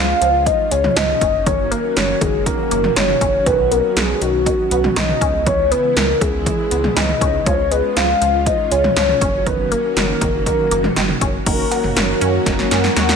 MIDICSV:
0, 0, Header, 1, 7, 480
1, 0, Start_track
1, 0, Tempo, 500000
1, 1406, Time_signature, 4, 2, 24, 8
1, 12633, End_track
2, 0, Start_track
2, 0, Title_t, "Soft synth lead"
2, 0, Program_c, 0, 80
2, 0, Note_on_c, 0, 77, 122
2, 445, Note_on_c, 0, 75, 104
2, 459, Note_off_c, 0, 77, 0
2, 685, Note_on_c, 0, 73, 103
2, 700, Note_off_c, 0, 75, 0
2, 923, Note_on_c, 0, 75, 107
2, 938, Note_off_c, 0, 73, 0
2, 1405, Note_on_c, 0, 73, 114
2, 1419, Note_off_c, 0, 75, 0
2, 1644, Note_on_c, 0, 70, 99
2, 1658, Note_off_c, 0, 73, 0
2, 1885, Note_on_c, 0, 73, 109
2, 1899, Note_off_c, 0, 70, 0
2, 2124, Note_on_c, 0, 68, 97
2, 2139, Note_off_c, 0, 73, 0
2, 2358, Note_off_c, 0, 68, 0
2, 2364, Note_on_c, 0, 70, 103
2, 2811, Note_off_c, 0, 70, 0
2, 2844, Note_on_c, 0, 73, 103
2, 3324, Note_on_c, 0, 71, 106
2, 3338, Note_off_c, 0, 73, 0
2, 3565, Note_on_c, 0, 70, 96
2, 3579, Note_off_c, 0, 71, 0
2, 3806, Note_on_c, 0, 68, 99
2, 3821, Note_off_c, 0, 70, 0
2, 4048, Note_on_c, 0, 66, 105
2, 4062, Note_off_c, 0, 68, 0
2, 4768, Note_on_c, 0, 75, 107
2, 4783, Note_off_c, 0, 66, 0
2, 5242, Note_off_c, 0, 75, 0
2, 5248, Note_on_c, 0, 73, 107
2, 5486, Note_on_c, 0, 71, 95
2, 5500, Note_off_c, 0, 73, 0
2, 5725, Note_on_c, 0, 70, 101
2, 5739, Note_off_c, 0, 71, 0
2, 5965, Note_on_c, 0, 68, 103
2, 5980, Note_off_c, 0, 70, 0
2, 6684, Note_on_c, 0, 75, 103
2, 6698, Note_off_c, 0, 68, 0
2, 7165, Note_on_c, 0, 73, 106
2, 7179, Note_off_c, 0, 75, 0
2, 7405, Note_on_c, 0, 71, 93
2, 7420, Note_off_c, 0, 73, 0
2, 7646, Note_on_c, 0, 77, 110
2, 7661, Note_off_c, 0, 71, 0
2, 8126, Note_on_c, 0, 75, 96
2, 8141, Note_off_c, 0, 77, 0
2, 8365, Note_on_c, 0, 73, 93
2, 8380, Note_off_c, 0, 75, 0
2, 8601, Note_off_c, 0, 73, 0
2, 8607, Note_on_c, 0, 73, 100
2, 9085, Note_on_c, 0, 71, 104
2, 9100, Note_off_c, 0, 73, 0
2, 9327, Note_on_c, 0, 70, 91
2, 9341, Note_off_c, 0, 71, 0
2, 9560, Note_off_c, 0, 70, 0
2, 9566, Note_on_c, 0, 70, 94
2, 10013, Note_off_c, 0, 70, 0
2, 10046, Note_on_c, 0, 70, 87
2, 10493, Note_off_c, 0, 70, 0
2, 12633, End_track
3, 0, Start_track
3, 0, Title_t, "Analog polysynth"
3, 0, Program_c, 1, 90
3, 11006, Note_on_c, 1, 66, 71
3, 11006, Note_on_c, 1, 70, 86
3, 11007, Note_on_c, 1, 58, 81
3, 11007, Note_on_c, 1, 61, 72
3, 12633, Note_off_c, 1, 58, 0
3, 12633, Note_off_c, 1, 61, 0
3, 12633, Note_off_c, 1, 66, 0
3, 12633, Note_off_c, 1, 70, 0
3, 12633, End_track
4, 0, Start_track
4, 0, Title_t, "String machine"
4, 0, Program_c, 2, 50
4, 0, Note_on_c, 2, 56, 76
4, 0, Note_on_c, 2, 61, 75
4, 0, Note_on_c, 2, 65, 93
4, 1128, Note_off_c, 2, 56, 0
4, 1149, Note_off_c, 2, 65, 0
4, 1164, Note_on_c, 2, 54, 76
4, 1164, Note_on_c, 2, 58, 79
4, 1165, Note_on_c, 2, 51, 84
4, 1165, Note_on_c, 2, 66, 91
4, 3304, Note_off_c, 2, 58, 0
4, 3325, Note_on_c, 2, 59, 78
4, 4967, Note_off_c, 2, 54, 0
4, 4967, Note_off_c, 2, 66, 0
4, 4968, Note_off_c, 2, 51, 0
4, 4968, Note_off_c, 2, 61, 0
4, 5007, Note_on_c, 2, 49, 83
4, 5007, Note_on_c, 2, 52, 74
4, 5007, Note_on_c, 2, 56, 74
4, 5007, Note_on_c, 2, 64, 89
4, 7127, Note_off_c, 2, 59, 0
4, 7145, Note_off_c, 2, 49, 0
4, 7145, Note_off_c, 2, 52, 0
4, 7145, Note_off_c, 2, 64, 0
4, 7165, Note_on_c, 2, 61, 76
4, 7165, Note_on_c, 2, 65, 92
4, 8808, Note_off_c, 2, 56, 0
4, 8829, Note_off_c, 2, 65, 0
4, 8848, Note_on_c, 2, 54, 76
4, 8848, Note_on_c, 2, 58, 75
4, 8849, Note_on_c, 2, 51, 84
4, 8849, Note_on_c, 2, 66, 94
4, 10967, Note_off_c, 2, 61, 0
4, 10985, Note_off_c, 2, 58, 0
4, 10986, Note_off_c, 2, 51, 0
4, 10986, Note_off_c, 2, 54, 0
4, 10986, Note_off_c, 2, 66, 0
4, 11006, Note_on_c, 2, 51, 83
4, 11006, Note_on_c, 2, 54, 78
4, 11006, Note_on_c, 2, 58, 76
4, 11006, Note_on_c, 2, 61, 77
4, 11007, Note_on_c, 2, 66, 91
4, 12633, Note_off_c, 2, 51, 0
4, 12633, Note_off_c, 2, 54, 0
4, 12633, Note_off_c, 2, 58, 0
4, 12633, Note_off_c, 2, 61, 0
4, 12633, Note_off_c, 2, 66, 0
4, 12633, End_track
5, 0, Start_track
5, 0, Title_t, "Synth arpeggio sound"
5, 0, Program_c, 3, 84
5, 0, Note_on_c, 3, 53, 74
5, 175, Note_off_c, 3, 53, 0
5, 206, Note_on_c, 3, 53, 86
5, 415, Note_off_c, 3, 53, 0
5, 446, Note_on_c, 3, 53, 73
5, 655, Note_off_c, 3, 53, 0
5, 686, Note_on_c, 3, 56, 77
5, 895, Note_off_c, 3, 56, 0
5, 926, Note_on_c, 3, 53, 89
5, 1135, Note_off_c, 3, 53, 0
5, 1166, Note_on_c, 3, 61, 78
5, 1375, Note_off_c, 3, 61, 0
5, 1407, Note_on_c, 3, 51, 93
5, 1615, Note_off_c, 3, 51, 0
5, 1646, Note_on_c, 3, 58, 77
5, 1855, Note_off_c, 3, 58, 0
5, 1887, Note_on_c, 3, 51, 73
5, 2095, Note_off_c, 3, 51, 0
5, 2127, Note_on_c, 3, 51, 90
5, 2336, Note_off_c, 3, 51, 0
5, 2366, Note_on_c, 3, 51, 72
5, 2575, Note_off_c, 3, 51, 0
5, 2606, Note_on_c, 3, 58, 77
5, 2815, Note_off_c, 3, 58, 0
5, 2845, Note_on_c, 3, 51, 92
5, 3054, Note_off_c, 3, 51, 0
5, 3085, Note_on_c, 3, 61, 79
5, 3294, Note_off_c, 3, 61, 0
5, 3326, Note_on_c, 3, 51, 89
5, 3535, Note_off_c, 3, 51, 0
5, 3564, Note_on_c, 3, 59, 76
5, 3774, Note_off_c, 3, 59, 0
5, 3806, Note_on_c, 3, 51, 72
5, 4015, Note_off_c, 3, 51, 0
5, 4046, Note_on_c, 3, 51, 91
5, 4255, Note_off_c, 3, 51, 0
5, 4286, Note_on_c, 3, 51, 71
5, 4495, Note_off_c, 3, 51, 0
5, 4526, Note_on_c, 3, 59, 78
5, 4735, Note_off_c, 3, 59, 0
5, 4766, Note_on_c, 3, 51, 88
5, 4975, Note_off_c, 3, 51, 0
5, 5006, Note_on_c, 3, 61, 82
5, 5215, Note_off_c, 3, 61, 0
5, 5246, Note_on_c, 3, 52, 91
5, 5455, Note_off_c, 3, 52, 0
5, 5486, Note_on_c, 3, 59, 77
5, 5695, Note_off_c, 3, 59, 0
5, 5726, Note_on_c, 3, 52, 76
5, 5935, Note_off_c, 3, 52, 0
5, 5965, Note_on_c, 3, 52, 89
5, 6174, Note_off_c, 3, 52, 0
5, 6206, Note_on_c, 3, 52, 71
5, 6415, Note_off_c, 3, 52, 0
5, 6446, Note_on_c, 3, 59, 75
5, 6655, Note_off_c, 3, 59, 0
5, 6686, Note_on_c, 3, 52, 89
5, 6895, Note_off_c, 3, 52, 0
5, 6926, Note_on_c, 3, 61, 82
5, 7135, Note_off_c, 3, 61, 0
5, 7166, Note_on_c, 3, 53, 92
5, 7375, Note_off_c, 3, 53, 0
5, 7406, Note_on_c, 3, 56, 76
5, 7615, Note_off_c, 3, 56, 0
5, 7647, Note_on_c, 3, 53, 75
5, 7855, Note_off_c, 3, 53, 0
5, 7887, Note_on_c, 3, 53, 90
5, 8096, Note_off_c, 3, 53, 0
5, 8127, Note_on_c, 3, 53, 73
5, 8335, Note_off_c, 3, 53, 0
5, 8367, Note_on_c, 3, 56, 78
5, 8576, Note_off_c, 3, 56, 0
5, 8606, Note_on_c, 3, 53, 93
5, 8815, Note_off_c, 3, 53, 0
5, 8847, Note_on_c, 3, 61, 79
5, 9056, Note_off_c, 3, 61, 0
5, 9087, Note_on_c, 3, 51, 93
5, 9295, Note_off_c, 3, 51, 0
5, 9327, Note_on_c, 3, 58, 79
5, 9535, Note_off_c, 3, 58, 0
5, 9566, Note_on_c, 3, 51, 77
5, 9775, Note_off_c, 3, 51, 0
5, 9806, Note_on_c, 3, 51, 90
5, 10015, Note_off_c, 3, 51, 0
5, 10046, Note_on_c, 3, 51, 70
5, 10255, Note_off_c, 3, 51, 0
5, 10286, Note_on_c, 3, 58, 75
5, 10495, Note_off_c, 3, 58, 0
5, 10525, Note_on_c, 3, 51, 90
5, 10735, Note_off_c, 3, 51, 0
5, 10765, Note_on_c, 3, 61, 77
5, 10975, Note_off_c, 3, 61, 0
5, 11005, Note_on_c, 3, 51, 90
5, 11214, Note_off_c, 3, 51, 0
5, 11484, Note_on_c, 3, 58, 78
5, 11694, Note_off_c, 3, 58, 0
5, 11725, Note_on_c, 3, 61, 99
5, 11934, Note_off_c, 3, 61, 0
5, 11965, Note_on_c, 3, 51, 73
5, 12175, Note_off_c, 3, 51, 0
5, 12206, Note_on_c, 3, 61, 81
5, 12415, Note_off_c, 3, 61, 0
5, 12446, Note_on_c, 3, 66, 97
5, 12633, Note_off_c, 3, 66, 0
5, 12633, End_track
6, 0, Start_track
6, 0, Title_t, "Analog synth bass"
6, 0, Program_c, 4, 38
6, 0, Note_on_c, 4, 37, 95
6, 134, Note_off_c, 4, 37, 0
6, 206, Note_on_c, 4, 37, 103
6, 458, Note_off_c, 4, 37, 0
6, 686, Note_on_c, 4, 37, 105
6, 854, Note_off_c, 4, 37, 0
6, 926, Note_on_c, 4, 37, 100
6, 1094, Note_off_c, 4, 37, 0
6, 1165, Note_on_c, 4, 30, 93
6, 1669, Note_off_c, 4, 30, 0
6, 1886, Note_on_c, 4, 30, 98
6, 2054, Note_off_c, 4, 30, 0
6, 2125, Note_on_c, 4, 30, 97
6, 2378, Note_off_c, 4, 30, 0
6, 2607, Note_on_c, 4, 30, 99
6, 2775, Note_off_c, 4, 30, 0
6, 2846, Note_on_c, 4, 30, 108
6, 3014, Note_off_c, 4, 30, 0
6, 3084, Note_on_c, 4, 30, 101
6, 3253, Note_off_c, 4, 30, 0
6, 3326, Note_on_c, 4, 35, 106
6, 3662, Note_off_c, 4, 35, 0
6, 3806, Note_on_c, 4, 35, 102
6, 3974, Note_off_c, 4, 35, 0
6, 4046, Note_on_c, 4, 35, 98
6, 4298, Note_off_c, 4, 35, 0
6, 4525, Note_on_c, 4, 35, 110
6, 4693, Note_off_c, 4, 35, 0
6, 4765, Note_on_c, 4, 35, 99
6, 4934, Note_off_c, 4, 35, 0
6, 5005, Note_on_c, 4, 37, 105
6, 5510, Note_off_c, 4, 37, 0
6, 5725, Note_on_c, 4, 37, 98
6, 5894, Note_off_c, 4, 37, 0
6, 5965, Note_on_c, 4, 37, 110
6, 6217, Note_off_c, 4, 37, 0
6, 6447, Note_on_c, 4, 37, 100
6, 6615, Note_off_c, 4, 37, 0
6, 6685, Note_on_c, 4, 37, 109
6, 6854, Note_off_c, 4, 37, 0
6, 6925, Note_on_c, 4, 37, 106
6, 7093, Note_off_c, 4, 37, 0
6, 7166, Note_on_c, 4, 37, 106
6, 7502, Note_off_c, 4, 37, 0
6, 7646, Note_on_c, 4, 37, 97
6, 7814, Note_off_c, 4, 37, 0
6, 7886, Note_on_c, 4, 37, 101
6, 8138, Note_off_c, 4, 37, 0
6, 8364, Note_on_c, 4, 37, 100
6, 8533, Note_off_c, 4, 37, 0
6, 8605, Note_on_c, 4, 37, 104
6, 8773, Note_off_c, 4, 37, 0
6, 8845, Note_on_c, 4, 30, 98
6, 9350, Note_off_c, 4, 30, 0
6, 9565, Note_on_c, 4, 30, 103
6, 9733, Note_off_c, 4, 30, 0
6, 9805, Note_on_c, 4, 30, 99
6, 10057, Note_off_c, 4, 30, 0
6, 10285, Note_on_c, 4, 30, 101
6, 10454, Note_off_c, 4, 30, 0
6, 10526, Note_on_c, 4, 30, 100
6, 10694, Note_off_c, 4, 30, 0
6, 10764, Note_on_c, 4, 30, 95
6, 10933, Note_off_c, 4, 30, 0
6, 11006, Note_on_c, 4, 30, 105
6, 11174, Note_off_c, 4, 30, 0
6, 11365, Note_on_c, 4, 30, 94
6, 11450, Note_off_c, 4, 30, 0
6, 11484, Note_on_c, 4, 30, 96
6, 11653, Note_off_c, 4, 30, 0
6, 11726, Note_on_c, 4, 42, 96
6, 11894, Note_off_c, 4, 42, 0
6, 11965, Note_on_c, 4, 30, 104
6, 12133, Note_off_c, 4, 30, 0
6, 12206, Note_on_c, 4, 42, 100
6, 12374, Note_off_c, 4, 42, 0
6, 12446, Note_on_c, 4, 39, 97
6, 12614, Note_off_c, 4, 39, 0
6, 12633, End_track
7, 0, Start_track
7, 0, Title_t, "Drums"
7, 207, Note_on_c, 9, 42, 73
7, 303, Note_off_c, 9, 42, 0
7, 445, Note_on_c, 9, 36, 82
7, 447, Note_on_c, 9, 42, 74
7, 541, Note_off_c, 9, 36, 0
7, 543, Note_off_c, 9, 42, 0
7, 686, Note_on_c, 9, 42, 86
7, 782, Note_off_c, 9, 42, 0
7, 809, Note_on_c, 9, 45, 86
7, 809, Note_on_c, 9, 47, 87
7, 905, Note_off_c, 9, 45, 0
7, 905, Note_off_c, 9, 47, 0
7, 926, Note_on_c, 9, 42, 73
7, 927, Note_on_c, 9, 38, 116
7, 1022, Note_off_c, 9, 42, 0
7, 1023, Note_off_c, 9, 38, 0
7, 1045, Note_on_c, 9, 45, 81
7, 1141, Note_off_c, 9, 45, 0
7, 1165, Note_on_c, 9, 36, 93
7, 1166, Note_on_c, 9, 42, 74
7, 1261, Note_off_c, 9, 36, 0
7, 1262, Note_off_c, 9, 42, 0
7, 1406, Note_on_c, 9, 42, 70
7, 1407, Note_on_c, 9, 36, 117
7, 1502, Note_off_c, 9, 42, 0
7, 1503, Note_off_c, 9, 36, 0
7, 1648, Note_on_c, 9, 42, 70
7, 1744, Note_off_c, 9, 42, 0
7, 1887, Note_on_c, 9, 42, 69
7, 1889, Note_on_c, 9, 38, 108
7, 1983, Note_off_c, 9, 42, 0
7, 1985, Note_off_c, 9, 38, 0
7, 2125, Note_on_c, 9, 36, 104
7, 2127, Note_on_c, 9, 42, 73
7, 2221, Note_off_c, 9, 36, 0
7, 2223, Note_off_c, 9, 42, 0
7, 2364, Note_on_c, 9, 36, 87
7, 2366, Note_on_c, 9, 42, 71
7, 2460, Note_off_c, 9, 36, 0
7, 2462, Note_off_c, 9, 42, 0
7, 2605, Note_on_c, 9, 42, 86
7, 2701, Note_off_c, 9, 42, 0
7, 2728, Note_on_c, 9, 45, 83
7, 2728, Note_on_c, 9, 47, 84
7, 2824, Note_off_c, 9, 45, 0
7, 2824, Note_off_c, 9, 47, 0
7, 2846, Note_on_c, 9, 42, 71
7, 2847, Note_on_c, 9, 38, 121
7, 2942, Note_off_c, 9, 42, 0
7, 2943, Note_off_c, 9, 38, 0
7, 2964, Note_on_c, 9, 45, 87
7, 3060, Note_off_c, 9, 45, 0
7, 3084, Note_on_c, 9, 36, 96
7, 3085, Note_on_c, 9, 42, 74
7, 3180, Note_off_c, 9, 36, 0
7, 3181, Note_off_c, 9, 42, 0
7, 3326, Note_on_c, 9, 36, 116
7, 3326, Note_on_c, 9, 42, 70
7, 3422, Note_off_c, 9, 36, 0
7, 3422, Note_off_c, 9, 42, 0
7, 3567, Note_on_c, 9, 42, 71
7, 3663, Note_off_c, 9, 42, 0
7, 3807, Note_on_c, 9, 42, 66
7, 3809, Note_on_c, 9, 38, 108
7, 3903, Note_off_c, 9, 42, 0
7, 3905, Note_off_c, 9, 38, 0
7, 4047, Note_on_c, 9, 42, 71
7, 4143, Note_off_c, 9, 42, 0
7, 4285, Note_on_c, 9, 36, 86
7, 4287, Note_on_c, 9, 42, 76
7, 4381, Note_off_c, 9, 36, 0
7, 4383, Note_off_c, 9, 42, 0
7, 4525, Note_on_c, 9, 42, 85
7, 4621, Note_off_c, 9, 42, 0
7, 4648, Note_on_c, 9, 45, 85
7, 4648, Note_on_c, 9, 47, 87
7, 4744, Note_off_c, 9, 45, 0
7, 4744, Note_off_c, 9, 47, 0
7, 4765, Note_on_c, 9, 42, 72
7, 4766, Note_on_c, 9, 38, 115
7, 4861, Note_off_c, 9, 42, 0
7, 4862, Note_off_c, 9, 38, 0
7, 4885, Note_on_c, 9, 45, 85
7, 4981, Note_off_c, 9, 45, 0
7, 5005, Note_on_c, 9, 36, 100
7, 5008, Note_on_c, 9, 42, 73
7, 5101, Note_off_c, 9, 36, 0
7, 5104, Note_off_c, 9, 42, 0
7, 5246, Note_on_c, 9, 36, 114
7, 5247, Note_on_c, 9, 42, 69
7, 5342, Note_off_c, 9, 36, 0
7, 5343, Note_off_c, 9, 42, 0
7, 5488, Note_on_c, 9, 42, 67
7, 5584, Note_off_c, 9, 42, 0
7, 5727, Note_on_c, 9, 42, 67
7, 5729, Note_on_c, 9, 38, 111
7, 5823, Note_off_c, 9, 42, 0
7, 5825, Note_off_c, 9, 38, 0
7, 5965, Note_on_c, 9, 36, 101
7, 5967, Note_on_c, 9, 42, 73
7, 6061, Note_off_c, 9, 36, 0
7, 6063, Note_off_c, 9, 42, 0
7, 6205, Note_on_c, 9, 36, 87
7, 6207, Note_on_c, 9, 42, 74
7, 6301, Note_off_c, 9, 36, 0
7, 6303, Note_off_c, 9, 42, 0
7, 6445, Note_on_c, 9, 42, 83
7, 6541, Note_off_c, 9, 42, 0
7, 6567, Note_on_c, 9, 45, 83
7, 6567, Note_on_c, 9, 47, 88
7, 6663, Note_off_c, 9, 45, 0
7, 6663, Note_off_c, 9, 47, 0
7, 6686, Note_on_c, 9, 42, 71
7, 6687, Note_on_c, 9, 38, 115
7, 6782, Note_off_c, 9, 42, 0
7, 6783, Note_off_c, 9, 38, 0
7, 6805, Note_on_c, 9, 45, 85
7, 6901, Note_off_c, 9, 45, 0
7, 6925, Note_on_c, 9, 36, 96
7, 6927, Note_on_c, 9, 42, 74
7, 7021, Note_off_c, 9, 36, 0
7, 7023, Note_off_c, 9, 42, 0
7, 7166, Note_on_c, 9, 36, 121
7, 7166, Note_on_c, 9, 42, 70
7, 7262, Note_off_c, 9, 36, 0
7, 7262, Note_off_c, 9, 42, 0
7, 7407, Note_on_c, 9, 42, 67
7, 7503, Note_off_c, 9, 42, 0
7, 7647, Note_on_c, 9, 42, 69
7, 7649, Note_on_c, 9, 38, 110
7, 7743, Note_off_c, 9, 42, 0
7, 7745, Note_off_c, 9, 38, 0
7, 7888, Note_on_c, 9, 42, 74
7, 7984, Note_off_c, 9, 42, 0
7, 8125, Note_on_c, 9, 36, 83
7, 8126, Note_on_c, 9, 42, 74
7, 8221, Note_off_c, 9, 36, 0
7, 8222, Note_off_c, 9, 42, 0
7, 8367, Note_on_c, 9, 42, 86
7, 8463, Note_off_c, 9, 42, 0
7, 8489, Note_on_c, 9, 45, 84
7, 8489, Note_on_c, 9, 47, 86
7, 8585, Note_off_c, 9, 45, 0
7, 8585, Note_off_c, 9, 47, 0
7, 8606, Note_on_c, 9, 42, 71
7, 8607, Note_on_c, 9, 38, 123
7, 8702, Note_off_c, 9, 42, 0
7, 8703, Note_off_c, 9, 38, 0
7, 8725, Note_on_c, 9, 45, 86
7, 8821, Note_off_c, 9, 45, 0
7, 8845, Note_on_c, 9, 36, 99
7, 8847, Note_on_c, 9, 42, 75
7, 8941, Note_off_c, 9, 36, 0
7, 8943, Note_off_c, 9, 42, 0
7, 9087, Note_on_c, 9, 36, 116
7, 9087, Note_on_c, 9, 42, 69
7, 9183, Note_off_c, 9, 36, 0
7, 9183, Note_off_c, 9, 42, 0
7, 9328, Note_on_c, 9, 42, 70
7, 9424, Note_off_c, 9, 42, 0
7, 9567, Note_on_c, 9, 42, 69
7, 9569, Note_on_c, 9, 38, 112
7, 9663, Note_off_c, 9, 42, 0
7, 9665, Note_off_c, 9, 38, 0
7, 9805, Note_on_c, 9, 36, 102
7, 9807, Note_on_c, 9, 42, 75
7, 9901, Note_off_c, 9, 36, 0
7, 9903, Note_off_c, 9, 42, 0
7, 10045, Note_on_c, 9, 36, 85
7, 10047, Note_on_c, 9, 42, 75
7, 10141, Note_off_c, 9, 36, 0
7, 10143, Note_off_c, 9, 42, 0
7, 10285, Note_on_c, 9, 42, 87
7, 10381, Note_off_c, 9, 42, 0
7, 10408, Note_on_c, 9, 45, 87
7, 10408, Note_on_c, 9, 47, 87
7, 10504, Note_off_c, 9, 45, 0
7, 10504, Note_off_c, 9, 47, 0
7, 10525, Note_on_c, 9, 42, 74
7, 10526, Note_on_c, 9, 38, 119
7, 10621, Note_off_c, 9, 42, 0
7, 10622, Note_off_c, 9, 38, 0
7, 10644, Note_on_c, 9, 45, 88
7, 10740, Note_off_c, 9, 45, 0
7, 10765, Note_on_c, 9, 36, 97
7, 10766, Note_on_c, 9, 42, 75
7, 10861, Note_off_c, 9, 36, 0
7, 10862, Note_off_c, 9, 42, 0
7, 11006, Note_on_c, 9, 36, 119
7, 11006, Note_on_c, 9, 42, 71
7, 11006, Note_on_c, 9, 49, 95
7, 11102, Note_off_c, 9, 36, 0
7, 11102, Note_off_c, 9, 42, 0
7, 11102, Note_off_c, 9, 49, 0
7, 11246, Note_on_c, 9, 56, 62
7, 11247, Note_on_c, 9, 42, 73
7, 11342, Note_off_c, 9, 56, 0
7, 11343, Note_off_c, 9, 42, 0
7, 11364, Note_on_c, 9, 45, 93
7, 11460, Note_off_c, 9, 45, 0
7, 11486, Note_on_c, 9, 42, 70
7, 11488, Note_on_c, 9, 38, 116
7, 11582, Note_off_c, 9, 42, 0
7, 11584, Note_off_c, 9, 38, 0
7, 11726, Note_on_c, 9, 42, 74
7, 11822, Note_off_c, 9, 42, 0
7, 11964, Note_on_c, 9, 36, 90
7, 11966, Note_on_c, 9, 38, 61
7, 11966, Note_on_c, 9, 42, 75
7, 12060, Note_off_c, 9, 36, 0
7, 12062, Note_off_c, 9, 38, 0
7, 12062, Note_off_c, 9, 42, 0
7, 12086, Note_on_c, 9, 38, 58
7, 12182, Note_off_c, 9, 38, 0
7, 12205, Note_on_c, 9, 38, 76
7, 12205, Note_on_c, 9, 42, 86
7, 12301, Note_off_c, 9, 38, 0
7, 12301, Note_off_c, 9, 42, 0
7, 12326, Note_on_c, 9, 38, 71
7, 12422, Note_off_c, 9, 38, 0
7, 12446, Note_on_c, 9, 42, 72
7, 12447, Note_on_c, 9, 38, 91
7, 12542, Note_off_c, 9, 42, 0
7, 12543, Note_off_c, 9, 38, 0
7, 12566, Note_on_c, 9, 38, 84
7, 12633, Note_off_c, 9, 38, 0
7, 12633, End_track
0, 0, End_of_file